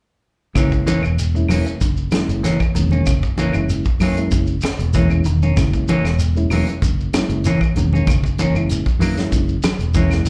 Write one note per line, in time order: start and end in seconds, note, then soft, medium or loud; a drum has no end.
0.54 0.98 F#1 medium
0.54 0.83 C#3 medium
0.54 0.73 E3 medium
0.54 0.92 G#3 medium
0.54 0.93 A#3 medium
0.54 0.72 A#3 medium
0.54 0.93 C#4 medium
0.54 0.71 C#4 medium
0.54 0.93 E4 medium
0.54 kick medium
0.54 closed hi-hat medium
0.54 claves medium
0.54 shekere medium
0.72 muted clean electric guitar stroke soft
0.72 kick medium
0.72 shekere soft
0.87 1.04 E3 medium
0.87 1.14 E3 medium
0.87 1.03 A#3 medium
0.87 1.02 C#4 medium
0.87 closed hi-hat soft
0.87 high conga medium
0.87 shekere medium
1.03 1.44 E1 medium
1.03 muted clean electric guitar stroke soft
1.03 claves medium
1.03 shekere soft
1.18 closed hi-hat medium
1.18 shekere medium
1.34 1.71 G#3 medium
1.34 1.72 A#3 medium
1.34 1.72 C#4 medium
1.34 1.72 E4 medium
1.34 muted clean electric guitar stroke soft
1.34 shekere soft
1.49 1.64 E1 medium
1.49 1.67 E3 soft
1.49 1.77 F#3 medium
1.49 1.66 A#3 medium
1.49 1.66 C#4 medium
1.49 open hi-hat medium
1.49 high conga medium
1.49 claves medium
1.49 shekere medium
1.66 muted fingered electric bass stroke soft
1.66 muted clean electric guitar stroke soft
1.66 closed hi-hat soft
1.66 shekere soft
1.81 2.09 F#1 medium
1.81 muted clean electric guitar stroke soft
1.81 kick medium
1.81 closed hi-hat medium
1.81 high conga medium
1.81 shekere medium
1.97 shekere soft
2.11 2.40 F#3 medium
2.11 2.42 G#3 medium
2.11 2.42 A#3 medium
2.11 2.42 C#4 medium
2.11 2.43 E4 medium
2.11 muted clean electric guitar stroke soft
2.11 snare medium
2.11 closed hi-hat soft
2.11 high conga medium
2.11 claves medium
2.11 shekere medium
2.28 2.57 F#1 medium
2.28 closed hi-hat soft
2.28 shekere soft
2.43 2.61 E3 medium
2.43 2.71 E3 medium
2.43 2.60 A#3 medium
2.43 2.60 C#4 medium
2.43 snare soft
2.43 closed hi-hat medium
2.43 shekere medium
2.60 muted clean electric guitar stroke soft
2.60 kick medium
2.60 claves medium
2.60 shekere soft
2.74 3.03 E1 medium
2.74 3.02 D#3 medium
2.74 3.13 E3 medium
2.74 3.12 G#3 medium
2.74 3.13 A#3 medium
2.74 3.13 C#4 medium
2.74 muted clean electric guitar stroke soft
2.74 closed hi-hat soft
2.74 high conga medium
2.74 shekere medium
2.91 3.11 A#3 soft
2.91 3.10 C#4 soft
2.91 high conga medium
2.91 shekere soft
3.06 3.49 F#1 medium
3.06 3.34 C#3 medium
3.06 kick medium
3.06 closed hi-hat medium
3.06 claves medium
3.06 shekere medium
3.23 muted clean electric guitar stroke soft
3.23 kick medium
3.23 shekere soft
3.38 3.66 E3 medium
3.38 3.55 E3 medium
3.38 3.55 A#3 medium
3.38 3.55 C#4 medium
3.38 closed hi-hat soft
3.38 high conga medium
3.38 shekere medium
3.53 3.82 F#1 medium
3.53 3.84 G#3 medium
3.53 3.84 A#3 medium
3.53 3.84 C#4 medium
3.53 3.84 E4 medium
3.53 muted clean electric guitar stroke soft
3.53 claves medium
3.53 shekere soft
3.69 closed hi-hat medium
3.69 shekere medium
3.85 muted clean electric guitar stroke soft
3.85 kick medium
3.85 shekere soft
4.00 4.28 F#2 medium
4.00 4.18 E3 medium
4.00 4.28 F#3 medium
4.00 4.18 A#3 medium
4.00 4.16 C#4 medium
4.00 open hi-hat medium
4.00 high conga medium
4.00 claves medium
4.00 shekere medium
4.16 4.53 G#3 medium
4.16 4.54 A#3 medium
4.16 4.54 C#4 medium
4.16 4.55 E4 medium
4.16 muted clean electric guitar stroke soft
4.16 closed hi-hat soft
4.16 shekere soft
4.31 4.59 F#1 medium
4.31 muted clean electric guitar stroke soft
4.31 kick medium
4.31 closed hi-hat medium
4.31 high conga medium
4.31 shekere medium
4.47 shekere soft
4.61 muted clean electric guitar stroke soft
4.61 snare medium
4.61 closed hi-hat soft
4.61 high conga medium
4.61 claves medium
4.61 shekere medium
4.79 5.20 E1 medium
4.79 closed hi-hat soft
4.79 shekere soft
4.93 5.11 E3 medium
4.93 5.22 E3 medium
4.93 5.24 G#3 medium
4.93 5.24 A#3 medium
4.93 5.10 A#3 medium
4.93 5.24 C#4 medium
4.93 5.10 C#4 medium
4.93 5.24 E4 medium
4.93 kick medium
4.93 closed hi-hat medium
4.93 shekere medium
5.10 muted clean electric guitar stroke soft
5.10 claves medium
5.10 shekere soft
5.25 5.53 E1 medium
5.25 5.53 D#3 medium
5.25 muted clean electric guitar stroke soft
5.25 closed hi-hat soft
5.25 shekere medium
5.43 5.62 A#3 soft
5.43 5.61 C#4 soft
5.43 high conga medium
5.43 shekere soft
5.57 5.99 F#1 medium
5.57 5.84 C#3 medium
5.57 5.94 G#3 medium
5.57 5.94 A#3 medium
5.57 5.95 C#4 medium
5.57 5.95 E4 medium
5.57 kick medium
5.57 snare soft
5.57 closed hi-hat medium
5.57 claves medium
5.57 shekere medium
5.73 muted clean electric guitar stroke soft
5.73 kick medium
5.73 shekere soft
5.88 6.16 E3 medium
5.88 6.06 E3 medium
5.88 6.05 A#3 medium
5.88 6.05 C#4 medium
5.88 closed hi-hat soft
5.88 high conga medium
5.88 shekere medium
6.04 6.45 E1 medium
6.04 muted clean electric guitar stroke soft
6.04 snare soft
6.04 claves medium
6.04 shekere soft
6.19 closed hi-hat medium
6.19 shekere medium
6.36 6.73 G#3 medium
6.36 6.73 A#3 medium
6.36 6.73 C#4 medium
6.36 6.73 E4 medium
6.36 muted clean electric guitar stroke soft
6.36 shekere soft
6.50 6.65 E1 medium
6.50 6.68 E3 medium
6.50 6.78 F#3 medium
6.50 6.68 A#3 medium
6.50 6.67 C#4 medium
6.50 open hi-hat medium
6.50 high conga medium
6.50 claves medium
6.50 shekere medium
6.67 muted clean electric guitar stroke soft
6.67 closed hi-hat soft
6.67 shekere soft
6.82 7.10 F#1 medium
6.82 muted clean electric guitar stroke soft
6.82 kick medium
6.82 closed hi-hat medium
6.82 high conga medium
6.82 shekere medium
7.00 shekere soft
7.13 7.41 F#3 medium
7.13 7.43 G#3 medium
7.13 7.43 A#3 medium
7.13 7.44 C#4 medium
7.13 7.44 E4 medium
7.13 muted clean electric guitar stroke soft
7.13 snare medium
7.13 closed hi-hat medium
7.13 high conga medium
7.13 claves medium
7.13 shekere medium
7.29 7.57 F#1 medium
7.29 closed hi-hat soft
7.29 shekere soft
7.44 7.62 E3 medium
7.44 7.73 E3 medium
7.44 7.61 A#3 medium
7.44 7.60 C#4 medium
7.44 closed hi-hat medium
7.44 shekere medium
7.61 muted clean electric guitar stroke soft
7.61 kick medium
7.61 claves medium
7.61 shekere soft
7.75 8.03 E1 medium
7.75 8.04 D#3 medium
7.75 8.14 E3 medium
7.75 8.13 G#3 medium
7.75 8.13 A#3 medium
7.75 8.14 C#4 medium
7.75 muted clean electric guitar stroke soft
7.75 closed hi-hat medium
7.75 high conga medium
7.75 shekere medium
7.93 8.12 A#3 soft
7.93 8.12 C#4 soft
7.93 high conga medium
7.93 shekere soft
8.07 8.49 F#1 medium
8.07 8.35 C#3 medium
8.07 kick medium
8.07 closed hi-hat medium
8.07 claves medium
8.07 shekere medium
8.24 muted clean electric guitar stroke soft
8.24 kick medium
8.24 shekere soft
8.38 8.67 E3 medium
8.38 8.56 A#3 medium
8.38 8.55 C#4 medium
8.38 muted clean electric guitar stroke medium
8.38 closed hi-hat medium
8.38 high conga medium
8.38 shekere medium
8.54 8.82 F#1 medium
8.54 8.84 G#3 medium
8.54 8.84 A#3 medium
8.54 8.85 C#4 medium
8.54 8.85 E4 medium
8.54 muted clean electric guitar stroke soft
8.54 claves medium
8.54 shekere soft
8.69 closed hi-hat medium
8.69 shekere medium
8.86 muted clean electric guitar stroke soft
8.86 kick medium
8.86 shekere soft
8.99 9.28 F#2 medium
8.99 9.17 E3 medium
8.99 9.29 F#3 medium
8.99 9.18 A#3 medium
8.99 muted clean electric guitar stroke medium
8.99 open hi-hat medium
8.99 high conga medium
8.99 claves medium
8.99 shekere medium
9.17 9.54 G#3 medium
9.17 9.54 A#3 medium
9.17 9.55 C#4 medium
9.17 9.55 E4 medium
9.17 muted clean electric guitar stroke soft
9.17 snare soft
9.17 closed hi-hat soft
9.17 high conga medium
9.17 shekere soft
9.31 9.60 F#1 medium
9.31 muted clean electric guitar stroke soft
9.31 kick medium
9.31 closed hi-hat medium
9.31 high conga medium
9.31 shekere medium
9.49 shekere soft
9.63 9.91 F#3 medium
9.63 muted clean electric guitar stroke soft
9.63 snare medium
9.63 closed hi-hat medium
9.63 high conga medium
9.63 claves medium
9.63 shekere medium
9.79 10.20 E1 medium
9.79 closed hi-hat soft
9.79 shekere soft
9.94 10.12 E3 medium
9.94 10.22 E3 medium
9.94 10.24 G#3 medium
9.94 10.12 A#3 medium
9.94 10.25 A#3 medium
9.94 10.25 C#4 medium
9.94 10.12 C#4 medium
9.94 10.25 E4 medium
9.94 kick medium
9.94 closed hi-hat medium
9.94 shekere medium
10.11 muted clean electric guitar stroke soft
10.11 snare soft
10.11 claves medium
10.11 shekere soft
10.25 10.29 E1 medium
10.25 closed hi-hat soft
10.25 shekere medium